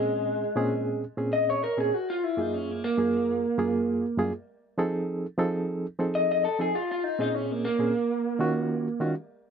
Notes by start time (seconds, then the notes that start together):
Already playing: A#2 G#3 C4 C#4 G#4
0.56 A#2 C4 C#4 G#4
1.17 A#2 C4 C#4 G#4
1.33 D#5
1.50 C#5
1.64 A#4
1.77 A#2 C4 C#4 G#4
1.94 F#4
2.10 F4
2.23 E4
2.37 F#2 A#3 D#4 F4 G#4
2.54 C#4
2.71 A#3
2.84 A#3
2.97 F#2 A#3 F4 G#4
3.58 F#2 A#3 F4 G#4
4.18 F#2 A#3 F4 G#4
4.78 F3 C4 D#4 G#4 A4
5.38 F3 C4 D#4 G#4 A4
5.99 F3 C4 D#4 G#4 A4
6.15 D#5
6.32 D#5
6.45 A4
6.59 F3 C4 D#4 G#4 A4
6.75 F4
6.92 F4
7.04 D#4
7.19 A#2 C4 C#4 D#4 G#4
7.35 C#4
7.52 A#3
7.65 A#3
7.79 A#2 C4 C#4 G#4
8.39 D#3 C#4 F4 F#4
9.00 D#3 C#4 F4 F#4